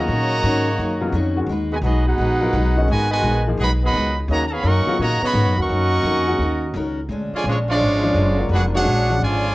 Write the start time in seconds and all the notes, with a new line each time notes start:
Already playing: C#3 F#3 A#3 A#5
0.00 F#4 C#5 D#5
0.08 A#2 D#3 A#3 C#4 F#4
0.43 G#2 D#3 A#3 C#4 F#4
0.77 F#2 D#3 A#3 C#4 F#4
1.01 C#3 F#3 B3 F4
1.12 F2 D#3 A#3 C#4
1.17 F#4
1.36 D#3 G#3 C#4 F#4
1.46 D#2 G#3 D#4
1.52 F#4 B4
1.72 B2 D#3 G#3 F#4 B4 D#5 G#5
1.81 B1 F#3 G#3 B3 D#4 F#4 G#4 D#5
1.86 B4
2.06 B3 D#4 F#4 G#4 B4 F#5
2.18 A#1 G#3 D#4 F#4 B4
2.41 F#3 B3 F4 A#4
2.53 B1 G#3 D#4 F#4 B4
2.77 D#3 G#3 C#4 D#4
2.88 G#1 B2 D#3 G#3 D#4 F#4 B4 D#5 G#5
3.11 B2 D#3 G#3 F#4 B4 D#5 G#5
3.23 A#1 G#3 D#4 F#4 B4
3.47 F3 A#3 D#4 G#4
3.57 B1 D#3 F#3 G#3 B3 D#4 G#4 D#5 F#5 B5
3.61 F#4 B4
3.83 D#3 F#3 B3 G#4 D#5 F#5 B5
3.94 C#2 G#3 D#4 F#4 B4
4.28 D#2 C#3 D#3 F#3 A#3 C#4 F#4 C#5 D#5 A#5
4.33 A#4
4.46 A#5
4.52 B3 G#4 C#5 F5 B5
4.63 F#2 D#3 F#3 A#3 C#4 F#4 A#4 D#5 F#5 C#6
4.86 C#3 F#3 B3 F4, muted upright bass stroke
4.98 A#2 C#3 D#3 F#3 A#3 C#4 F#4 A#4 C#5 D#5 A#5
5.21 C#3 F#3 B3 F#4 C#5 D#5 B5, muted upright bass stroke
5.33 G#2 D#3 C#4 F#4 A#4
5.45 F#2
5.57 D#2 A#3 C#4 F#4 A#4 D#5 F#5 C#6
5.69 F#2 D#3 C#4 F#4 A#4
6.03 F2 D#3 C#4 F#4 A#4
6.27 D#3 G#3 C#4 F#4
6.38 D#2 D#3 C#4 F#4
6.43 A#4
6.74 C#2 D#3 C#4 F#4 A#4
7.09 D2 A#2 G#3 C#4 D4
7.32 D3 F3 G#3 F4 C#5 G#5, muted upright bass stroke
7.36 D5
7.44 A#1 A#2 F3 G#3 C#4 D4
7.48 G#3 F4 C#5
7.69 F3 G#3 D4 F4 C#5 D5
7.78 G#1 A#2 G#3 C#4 D4
8.03 F3 G#3 C#4 D4
8.14 F#1 A#2 G#3 C#4 D4
8.38 F#3 A#3 D4 F4
8.49 F1 A#2 G#3 C#4 D4 F#4 G#4 B4
8.53 D4 F#5
8.74 G#3 D4 F#4 G#4 C#5 F#5
8.84 A#1 A#2 G#3 C#4 D4
9.10 F3 G#3 C#4 D4
9.19 G#1 A#2 D3 F3 G#3 C#4 D4 C#5 D5 G#5
9.23 F4